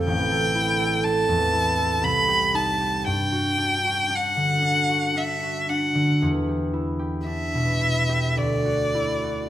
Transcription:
<<
  \new Staff \with { instrumentName = "Violin" } { \time 3/4 \key g \major \tempo 4 = 57 g''4 a''4 b''8 a''8 | g''4 fis''4 e''8 fis''8 | r4 e''4 d''4 | }
  \new Staff \with { instrumentName = "Harp" } { \time 3/4 \key g \major <a,, g a g' a'>16 a'16 e'16 a'16 c'16 e,16 e'16 a'16 c,16 g'16 ees'16 g'16 | g,16 fis'16 d'16 fis'16 d'16 d16 d'16 fis'16 d'16 fis'16 d'16 d16 | e,16 g'16 e'16 g'16 d'16 b,16 e'16 g'16 d,16 fis'16 e'16 fis'16 | }
>>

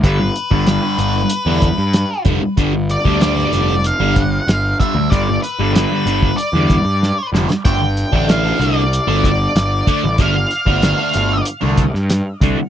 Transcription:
<<
  \new Staff \with { instrumentName = "Lead electric guitar" } { \time 4/4 \key g \mixolydian \tempo 4 = 94 b'4 b'2~ b'8 r8 | r8 d''8 d''4 f''4. e''8 | d''8 b'8 b'4 d''4. r8 | g''4 f''8 d''4 d''4. |
f''4 f''4 r2 | }
  \new Staff \with { instrumentName = "Distorted electric guitar" } { \clef bass \time 4/4 \key g \mixolydian <g, d g>16 r8 <g, d g>16 <g, d g>16 <g, d g>16 <g, d g>16 r8 <g, d g>16 r4 <g, d g>16 r16 | <g, d g>16 r8 <g, d g>16 <g, d g>16 <g, d g>16 <g, d g>16 r8 <g, d g>16 r4 <g, d g>16 r16 | <g, d g>16 r8 <g, d g>16 <g, d g>16 <g, d g>16 <g, d g>16 r8 <g, d g>16 r4 <g, d g>16 r16 | <d a d'>16 r8 <d a d'>16 <d a d'>16 <d a d'>16 <d a d'>16 r8 <d a d'>16 r4 <d a d'>16 r16 |
<d a d'>16 r8 <d a d'>16 <d a d'>16 <d a d'>16 <d a d'>16 r8 <d a d'>16 r4 <d a d'>16 r16 | }
  \new Staff \with { instrumentName = "Picked electric bass" } { \clef bass \time 4/4 \key g \mixolydian g,,8 r16 g,,8 r16 g,,8 r16 e,8 g,8 r16 f,,16 r16 | g,,8. d,8. f,,8. g,,8. g,,8 r16 d,16 | g,,8 r16 g,,8 r16 g,,8 r16 e,8 g,8 r16 f,,16 r16 | g,,8. a,,8. c,8. g,,8. g,,8 r16 a,,16 |
g,,8 r16 g,,8 r16 g,,8 r16 c,8 g,8 r16 c,16 r16 | }
  \new DrumStaff \with { instrumentName = "Drums" } \drummode { \time 4/4 <hh bd>8 hh16 bd16 <hh sn>8 hh8 hh8 <hh bd>8 <hh sn>8 <hh bd>8 | <hh bd>8 hh16 bd16 <hh sn>16 sn16 <hh sn>8 hh8 <hh bd>8 <hh sn>8 <hh bd>8 | <hh bd>8 hh8 <hh sn>8 hh16 bd16 hh8 <hh bd>8 sn8 sn16 sn16 | <hh bd>8 hh16 bd16 <hh sn>16 sn16 hh8 hh8 <hh bd>8 <hh sn>8 <hh bd>8 |
<hh bd>8 hh16 bd16 <hh sn>8 hh8 hh8 <hh bd>16 sn16 <hh sn>8 <hh bd>8 | }
>>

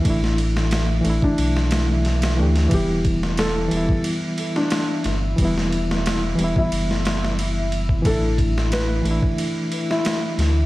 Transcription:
<<
  \new Staff \with { instrumentName = "Ambient pad" } { \time 4/4 \key e \minor \tempo 4 = 90 <e' e''>1 | <e' e''>1~ | <e' e''>1~ | <e' e''>1 | }
  \new Staff \with { instrumentName = "Felt piano" } { \time 4/4 \key e \minor r4. r16 d'2 r16 | g'8 r8 a'4 r8. d'8. r8 | r4. r16 e'2 r16 | a'8 r8 b'4 r8. e'8. r8 | }
  \new Staff \with { instrumentName = "Reed electric piano" } { \time 4/4 \key e \minor <e a d' e'>4. <e a d' e'>4~ <e a d' e'>16 <e a d' e'>16 r8 <e a d' g'>8 | <e g b e'>4. <e g b e'>2~ <e g b e'>8 | <e g b e'>4. <e g b e'>2~ <e g b e'>8 | <e a d' e'>4. <e a d' e'>2~ <e a d' e'>8 | }
  \new Staff \with { instrumentName = "Sub bass" } { \clef bass \time 4/4 \key e \minor a,,4. a,,8 b,,4. d,8 | e,,4. e,,8 r4. g,,8 | e,,4. e,,8 fis,,2 | a,,4. a,,8 r4. d,8 | }
  \new DrumStaff \with { instrumentName = "Drums" } \drummode { \time 4/4 <bd cymr>16 sn16 cymr16 sn16 <cymr sn>8 cymr16 bd16 cymr16 sn16 <cymr sn>8 <cymr sn>16 <cymr sn>8 <cymr sn>16 | <bd cymr>8 <bd cymr>16 sn16 <cymr sn>8 cymr16 bd16 cymr8 cymr16 sn16 <cymr sn>8 <cymr sn>8 | <bd cymr>16 sn16 cymr16 sn16 <cymr sn>8 cymr16 bd16 cymr16 sn16 <cymr sn>16 sn16 cymr8 cymr16 bd16 | <bd cymr>8 <bd cymr>16 sn16 <cymr sn>8 cymr16 bd16 cymr8 cymr16 sn16 <cymr sn>8 <cymr sn>8 | }
>>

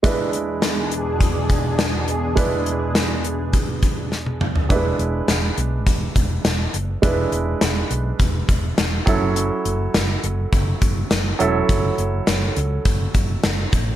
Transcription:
<<
  \new Staff \with { instrumentName = "Grand piano" } { \time 4/4 \key e \mixolydian \tempo 4 = 103 <gis d' e' b'>1 | <gis d' e' b'>2.~ <gis d' e' b'>8 r8 | <fis gis d' e' b'>1 | <gis d' e' b'>2.~ <gis d' e' b'>8 <fis cis' e' a'>8~ |
<fis cis' e' a'>2.~ <fis cis' e' a'>8 <fis cis' e' a'>8~ | <fis cis' e' a'>2.~ <fis cis' e' a'>8 r8 | }
  \new Staff \with { instrumentName = "Analog synth pad" } { \clef bass \time 4/4 \key e \mixolydian <e, b, d' gis'>1~ | <e, b, d' gis'>1 | r1 | r1 |
r1 | r1 | }
  \new Staff \with { instrumentName = "Fretless electric bass" } { \clef bass \time 4/4 \key e \mixolydian r1 | r1 | e,,8 e,,8 e,,8 b,,8 e,,8 e,,8 e,,8 fis,,8 | e,,8 e,,8 e,,8 b,,8 e,,8 e,,8 e,,8 fis,,8~ |
fis,,8 fis,,8 fis,,8 fis,,8 fis,,8 fis,,8 fis,,8 e,,8 | fis,,8 fis,,8 fis,,8 cis,8 fis,,8 fis,,8 fis,,8 a,,8 | }
  \new DrumStaff \with { instrumentName = "Drums" } \drummode { \time 4/4 <hh bd>8 hh8 <hh sn>8 hh8 <hh bd>8 <hh bd>8 <hh sn>8 hh8 | <hh bd>8 hh8 <hh sn>8 hh8 <hh bd>8 <hh bd>8 sn16 tommh16 toml16 tomfh16 | <hh bd>8 hh8 <hh sn>8 hh8 <hh bd>8 <hh bd>8 <hh sn>8 hh8 | <hh bd>8 hh8 <hh sn>8 hh8 <hh bd>8 <hh bd>8 <hh sn>8 <hh bd>8 |
hh8 hh8 <hh sn>8 hh8 <hh bd>8 <hh bd>8 <hh sn>8 hh8 | <hh bd>8 hh8 <hh sn>8 hh8 <hh bd>8 <hh bd>8 <hh sn>8 <hh bd>8 | }
>>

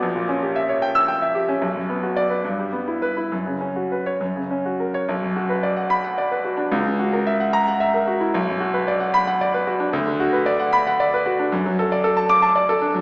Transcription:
\new Staff \with { instrumentName = "Grand piano" } { \time 6/8 \key b \minor \tempo 4. = 74 << { r4. r16 e'''8 r8. | r4 d''8 r4 b'8 | r4 r16 cis''16 r4 r16 cis''16 | r4. b''8 r4 |
r4. ais''8 r4 | r4. b''8 r4 | r4. b''8 r4 | \key d \major r4. d'''8 r4 | } \\ { ais,,16 ais,16 cis'16 g'16 e''16 cis''16 g''8 g''16 e''16 g'16 cis'16 | b,,16 fis,16 b16 fis'8 b'16 g,16 g16 b16 e'8 e'16 | fis,16 cis16 cis'16 fis'16 b'8 fis,16 cis16 cis'16 fis'16 ais'8 | b,,16 fis,16 fis'16 b'16 d''16 fis''8 fis''16 d''16 b'16 fis'16 d'16 |
cis,16 cis16 fis'16 ais'16 e''16 fis''8 fis''16 e''16 ais'16 fis'16 e'16 | b,,16 fis,16 fis'16 b'16 d''16 fis''8 fis''16 d''16 b'16 fis'16 d'16 | d,16 d16 fis'16 b'16 d''16 fis''8 fis''16 d''16 b'16 fis'16 d'16 | fis,16 fis16 a'16 d''16 a'16 a''8 a''16 d''16 a'16 d'16 fis16 | } >> }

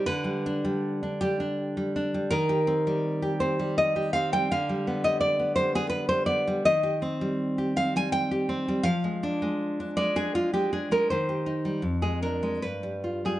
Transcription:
\new Staff \with { instrumentName = "Nylon-string guitar" } { \time 3/4 \key c \minor \tempo 4 = 81 << { b'4. g'8 r4 | bes'4. c''8 ees''8 f''16 g''16 | f''8. ees''16 d''8 c''16 aes'16 b'16 c''16 d''8 | ees''4. f''16 aes''16 g''4 |
f''4. d''16 aes'16 f'16 g'16 aes'16 bes'16 | c''4~ c''16 aes'16 bes'8 b'8. aes'16 | } \\ { d16 g16 d'16 g8 d'16 g16 d'8 g16 d'16 g16 | ees16 g'16 c'16 g8 g'16 c'16 g8 g'16 c'16 g16 | d16 g16 b16 g8 b16 g16 b8 g16 b16 g16 | ees16 g'16 c'16 g8 g'16 c'16 g8 g'16 c'16 g16 |
f16 aes16 d'16 aes8 d'16 aes16 d'8 aes16 d'16 aes16 | ees16 g'16 ees'16 g16 f,16 aes16 d'16 aes16 g,16 g16 f'16 g16 | } >> }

